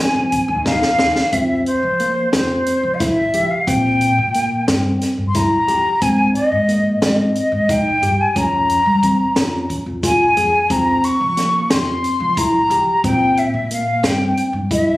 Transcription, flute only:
0.00 0.63 G#5 medium
0.66 1.34 F5 loud
1.32 1.65 E5 medium
1.66 2.29 C5 medium
2.33 2.95 C5 medium
2.94 3.01 F5 medium
3.00 3.52 E5 medium
3.50 3.68 F5 medium
3.67 5.01 G5 loud
5.28 5.37 C6 medium
5.36 6.03 A#5 loud
6.02 6.34 G#5 medium
6.34 6.98 D#5 medium
7.03 7.72 D#5 medium
7.70 8.22 G5 medium
8.21 8.39 G#5 medium
8.37 9.71 A#5 loud
10.05 10.72 G#5 loud
10.71 11.06 A#5 medium
11.04 11.73 C#6 medium
11.72 12.39 C6 medium
12.38 13.04 A#5 loud
13.05 13.39 G5 loud
13.38 13.71 E5 medium
13.72 14.07 F5 medium
14.05 14.45 G5 medium
14.72 14.97 E5 loud

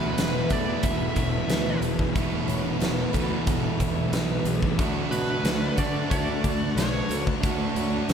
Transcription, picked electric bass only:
0.17 0.42 E1 medium
0.51 0.75 E2 medium
0.84 1.08 E1 medium
1.16 1.41 E1 medium
1.49 1.73 D2 medium
1.81 2.06 E1 medium
2.16 2.40 E1 medium
2.47 2.72 E1 medium
2.79 3.05 E1 medium
3.14 3.39 D2 medium
3.47 3.71 E1 loud
3.80 4.04 E1 medium
4.11 4.37 B1 medium
4.44 4.70 B1 medium
4.79 5.04 D2 medium
5.10 5.36 B2 medium
5.44 5.69 D2 medium
5.78 6.03 D3 medium
6.11 6.36 D2 medium
6.44 6.69 D2 medium
6.76 7.01 B1 medium
7.09 7.34 D2 medium
7.43 7.68 D2 medium
7.76 8.00 D2 medium
8.09 8.13 D2 medium

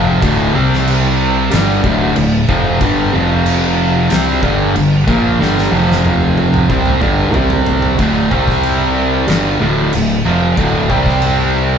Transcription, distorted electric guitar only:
0.00 0.21 F2 medium
0.00 0.22 C3 medium
0.00 0.22 F3 loud
0.22 0.54 D2 medium
0.22 0.54 A2 loud
0.22 0.54 D3 loud
0.54 1.51 C3 medium
0.54 1.51 G3 loud
0.54 1.51 C4 loud
1.52 1.83 G2 loud
1.52 1.83 D3 loud
1.52 1.84 G3 loud
1.84 2.15 D2 loud
1.84 2.16 A2 loud
1.84 2.16 D3 loud
2.16 2.42 D2 medium
2.16 2.43 A2 medium
2.49 2.80 F2 medium
2.49 2.80 C3 loud
2.49 2.81 F3 loud
2.81 3.12 G2 loud
2.81 3.13 D3 loud
2.81 3.13 G3 loud
3.13 4.09 F2 medium
3.13 4.09 C3 loud
3.13 4.10 F3 loud
4.10 4.42 C3 medium
4.10 4.42 G3 loud
4.10 4.42 C4 loud
4.42 4.74 G2 loud
4.42 4.74 D3 loud
4.42 4.75 G3 loud
4.75 5.01 G2 medium
4.75 5.01 D3 medium
5.07 5.39 A#2 medium
5.07 5.39 F3 medium
5.07 5.39 A#3 loud
5.40 5.71 G2 loud
5.40 5.72 D3 loud
5.40 5.72 G3 loud
5.72 6.68 F2 loud
5.72 6.68 C3 loud
5.72 6.68 F3 loud
6.69 7.01 C3 loud
6.69 7.01 G3 medium
6.69 7.01 C4 loud
7.02 7.35 G2 loud
7.02 7.35 D3 loud
7.02 7.35 G3 loud
7.35 7.98 C3 loud
7.35 7.98 G3 loud
7.35 7.98 C4 loud
7.99 8.31 D2 loud
7.99 8.31 A2 loud
7.99 8.32 D3 loud
8.31 9.27 C3 medium
8.31 9.27 G3 loud
8.31 9.28 C4 loud
9.27 9.59 G2 loud
9.27 9.59 D3 loud
9.27 9.59 G3 loud
9.60 9.92 D2 medium
9.60 9.92 A2 loud
9.60 9.92 D3 loud
9.93 10.19 D2 medium
9.93 10.19 A2 medium
10.25 10.56 F2 loud
10.25 10.57 C3 loud
10.25 10.57 F3 loud
10.58 10.89 D2 medium
10.58 10.90 A2 loud
10.58 10.90 D3 loud
10.89 11.78 C3 medium
10.89 11.78 G3 loud
10.89 11.78 C4 loud

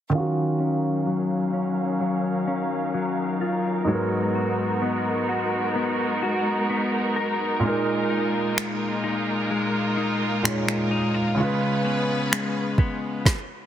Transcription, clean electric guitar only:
0.13 3.88 D#3 medium
0.60 1.52 C#4 medium
1.07 2.00 F#3 medium
1.54 2.46 C#4 medium
2.01 2.94 F#3 medium
2.47 3.97 C#4 medium
2.94 3.88 F#3 medium
3.41 3.98 F4 medium
3.88 7.63 G#3 medium
4.35 5.28 F#4 medium
4.82 5.74 B3 medium
5.29 6.21 F#4 medium
5.76 6.68 B3 medium
6.23 7.73 F#4 medium
6.70 7.73 B3 medium
7.16 8.60 A#4 medium
7.63 11.38 A#2 medium
8.10 9.03 D#4 medium
8.57 9.50 G#3 medium
9.04 9.96 D#4 medium
9.51 10.44 G#3 medium
9.97 10.90 D#4 medium
10.44 12.31 G#3 medium
10.91 11.14 D#4 medium
11.14 11.47 F4 medium
11.38 13.35 C#3 medium
11.85 12.78 B3 medium
12.32 13.35 G#3 medium
12.79 13.35 B3 medium

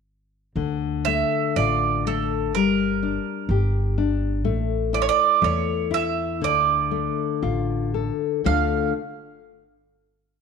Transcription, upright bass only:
0.56 1.21 D2 medium
1.56 2.54 A1 medium
2.54 3.16 G1 medium
3.49 4.44 G1 medium
4.44 5.08 A1 medium
5.42 6.42 E2 medium
6.42 7.07 D2 medium
7.43 8.09 A1 medium
8.45 8.92 D2 medium

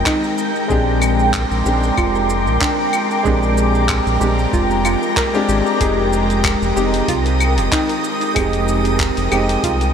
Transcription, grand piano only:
0.00 0.40 G#3 medium
0.00 0.40 C4 medium
0.00 0.40 D#4 medium
0.00 0.40 G4 medium
0.68 1.61 G#3 medium
0.68 1.62 C4 medium
0.68 1.62 D4 medium
0.68 1.63 G4 medium
1.64 3.21 G#3 medium
1.64 3.21 C4 medium
1.64 3.22 D4 medium
1.64 3.23 G4 medium
3.23 4.16 G#3 medium
3.23 4.17 C4 medium
3.23 4.18 D4 medium
3.23 4.18 G4 medium
4.19 5.30 G#3 medium
4.19 5.30 C4 medium
4.19 5.31 D4 medium
4.19 5.31 G4 medium
5.34 5.77 G#3 medium
5.34 5.77 C4 medium
5.34 5.77 D4 medium
5.34 5.78 G4 loud
5.79 6.72 G#3 medium
5.79 6.73 C4 medium
5.79 6.73 D#4 medium
5.79 6.74 G4 medium
6.75 8.32 G#3 medium
6.75 8.32 C4 medium
6.75 8.33 D#4 medium
6.75 8.33 G4 medium
8.34 9.27 G#3 medium
8.34 9.28 C4 medium
8.34 9.28 D#4 medium
8.34 9.29 G4 medium
9.30 9.94 G#3 medium
9.30 9.94 C4 medium
9.30 9.94 D#4 medium
9.30 9.94 G4 medium

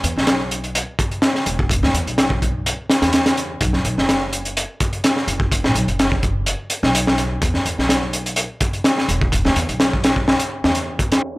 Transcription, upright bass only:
0.03 0.12 E2 loud
0.16 0.81 B1 medium
1.46 1.84 E1 medium
1.83 1.90 E2 medium
1.94 2.03 E2 medium
2.07 2.71 B1 medium
3.02 3.55 E2 medium
3.61 3.77 B1 medium
3.85 3.93 B1 loud
3.98 4.62 F#1 medium
5.27 5.66 F#1 medium
5.64 5.72 B1 loud
5.75 5.84 B1 loud
5.88 6.52 F#1 medium
6.83 7.36 B1 medium
7.42 7.58 E2 loud
7.65 7.74 E2 loud
7.78 8.43 B1 medium
9.08 9.46 E1 medium
9.45 9.52 E2 loud
9.56 9.65 E2 loud
9.69 10.33 B1 medium
10.64 11.17 E2 loud

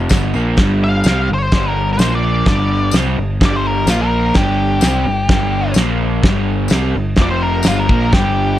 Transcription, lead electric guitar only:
0.84 1.28 F5 medium
1.34 1.44 D5 medium
1.44 1.68 C5 medium
1.68 1.89 A#4 medium
1.93 2.13 C5 medium
2.15 2.47 D5 medium
2.48 2.93 D5 medium
3.45 3.56 D5 medium
3.56 3.67 C5 medium
3.67 3.88 A#4 medium
3.90 4.00 F4 medium
4.01 4.35 A#4 loud
4.37 5.73 G4 loud
7.22 7.30 D5 loud
7.31 7.42 C5 medium
7.42 7.65 A#4 medium
7.68 7.78 F4 medium
7.79 8.13 A#4 medium
8.14 8.59 G4 medium

